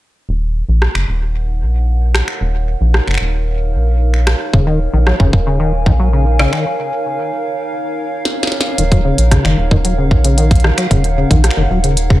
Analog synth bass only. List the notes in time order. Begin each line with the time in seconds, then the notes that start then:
0.29 D#1
0.69 A#1
0.95 F#1
1.08 D#1
1.62 A#1
2.41 D#1
2.81 A#1
3.08 F#1
3.21 D#1
3.74 A#1
4.54 D#1
4.94 A#1
5.20 F#1
5.33 D#1
5.86 A#1
8.78 D#1
9.18 A#1
9.45 F#1
9.58 D#1
10.11 A#1
10.91 D#1
11.31 A#1
11.57 F#1
11.71 D#1